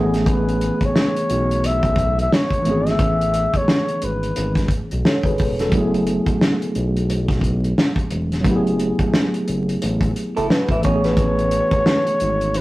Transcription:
Already playing: A1 E3 A3 B3 C#4 G#4
0.14 snare, closed hi-hat
0.26 B4, kick, closed hi-hat
0.49 closed hi-hat
0.61 closed hi-hat
0.81 kick, closed hi-hat
0.85 C#5
0.96 snare
1.16 closed hi-hat
1.30 B1, closed hi-hat
1.51 closed hi-hat
1.64 E5, closed hi-hat
1.83 kick, closed hi-hat
1.96 kick, closed hi-hat
2.19 E5, closed hi-hat
2.33 C#5, snare
2.51 kick, closed hi-hat
2.62 E3 A3, closed hi-hat
2.66 G#1 B3 C#4
2.71 G#4
2.87 E5, snare, closed hi-hat
2.99 A1, kick, closed hi-hat
3.21 closed hi-hat
3.34 closed hi-hat
3.54 C#5, kick, closed hi-hat
3.68 snare
3.88 closed hi-hat
4.02 G#1 B4, closed hi-hat
4.23 closed hi-hat
4.36 G#1, closed hi-hat
4.55 kick, snare, closed hi-hat
4.68 kick, closed hi-hat
4.91 B1, closed hi-hat
5.05 A4 C#5, snare
5.23 G#1 G#4 B4, kick, closed hi-hat
5.38 E1, kick, open hi-hat
5.59 F#4 A4, snare, closed hi-hat
5.69 F#1 F#3 G#3, kick, closed hi-hat
5.73 B3 E4
5.78 A3 G#4
5.94 closed hi-hat
6.07 closed hi-hat
6.26 kick, closed hi-hat
6.41 snare
6.62 closed hi-hat
6.75 B1, closed hi-hat
6.97 closed hi-hat
7.10 closed hi-hat
7.28 kick, snare, closed hi-hat
7.41 kick, closed hi-hat
7.64 closed hi-hat
7.78 snare
7.96 kick, closed hi-hat
8.11 E1, closed hi-hat
8.32 snare, closed hi-hat
8.41 F#3 A3, kick
8.45 F#1 B3 E4, closed hi-hat
8.49 G4
8.56 G#4
8.67 closed hi-hat
8.79 closed hi-hat
8.99 kick, closed hi-hat
9.14 snare
9.34 closed hi-hat
9.48 F#1, closed hi-hat
9.69 closed hi-hat
9.82 A1, closed hi-hat
10.01 kick, closed hi-hat
10.16 closed hi-hat
10.37 F#1 E4 A4, closed hi-hat
10.50 F#4 B4, snare
10.68 A1 B4 E5, kick, closed hi-hat
10.80 E3 A3, closed hi-hat
10.84 A1 B3 C#4 G#4 C#5, kick
10.89 F#4
10.95 G#4
11.04 F#4 B4, snare, closed hi-hat
11.17 kick, closed hi-hat
11.39 closed hi-hat
11.51 closed hi-hat
11.71 kick, closed hi-hat
11.86 snare
12.07 closed hi-hat
12.20 G#1, closed hi-hat
12.41 closed hi-hat
12.54 B4, closed hi-hat

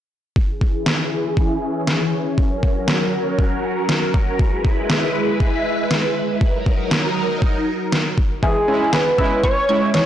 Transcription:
0.36 E3 C#4 G#4, kick
0.61 kick
0.86 snare
1.37 kick
1.87 snare
2.38 F#3 A#4, kick
2.63 kick
2.88 snare
3.39 kick
3.89 snare
4.14 kick
4.39 G#3 E4 B4, kick
4.65 kick
4.90 snare
5.40 kick
5.91 snare
6.41 F#3 D#4 A#4, kick
6.66 kick
6.91 snare
7.42 kick
7.92 snare
8.18 kick
8.43 E3 G#4, kick
8.68 G#3 C#4 E4
8.93 G#4 B4, snare
9.18 G#3 C#4 E4 E5, kick
9.43 C#5 C#6, kick
9.69 G#3 C#4 E4 G#6
9.94 E3 C#5, snare

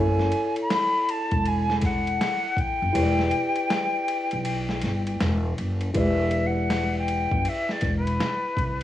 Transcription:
Already playing: F#1 E4 A4 C#5
0.00 G#5
0.19 snare
0.32 ride
0.56 ride
0.62 B5
0.70 snare, hi-hat pedal, ride
1.09 A5, ride
1.31 E1, kick, ride
1.45 G#5, ride
1.70 snare
1.81 F#5, kick, snare, ride
2.07 ride
2.21 snare, hi-hat pedal, ride
2.57 G5, kick, ride
2.82 F#1
2.93 E1 E4 G4 B4 C#5, ride
3.03 D5
3.19 snare
3.31 ride
3.56 ride
3.70 snare, hi-hat pedal, ride
4.08 ride
4.31 B1, ride
4.45 ride
4.69 snare
4.81 G1, snare, ride
5.07 ride
5.20 E1, snare, hi-hat pedal, ride
5.58 F#1, ride
5.81 ride
5.94 E1 E4 G4 B4 D5 E5, kick, ride
6.31 ride
6.46 F#5
6.70 snare, hi-hat pedal, ride
6.98 G5
7.08 ride
7.31 F#1, kick
7.45 E5, ride
7.69 D5, snare
7.81 E1, kick, snare, ride
7.96 B4
8.07 ride
8.20 snare, hi-hat pedal, ride
8.57 C2, kick, ride

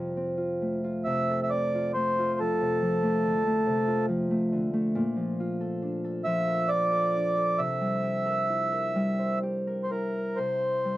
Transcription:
Already playing: F2 C3 G4
0.17 C4
0.37 F4
0.62 A3
0.84 F4
1.04 C3 E5
1.30 A4
1.43 E5
1.50 C4 D5
1.75 F4
1.94 A3 C5
2.19 F4
2.40 F2 A4
2.61 C3
2.82 F3
3.03 A3
3.25 D3
3.47 A3
3.66 C3
3.87 F4
4.09 F3
4.31 A3
4.52 D3
4.74 A3
4.95 A#2
5.16 F3
5.40 F4
5.61 A4
5.82 D4
6.04 A4
6.24 F3 E5
6.48 A#4
6.69 F4 D5
6.91 A4
7.15 D4
7.38 A4
7.58 C3 E5
7.81 G3
8.03 G4
8.26 A#4
8.49 E4
8.72 A#4
8.96 G3
9.19 C5
9.43 G4
9.67 A#4
9.83 C5
9.91 E4 A#4
10.16 A#4
10.36 C3 C5
10.85 G3

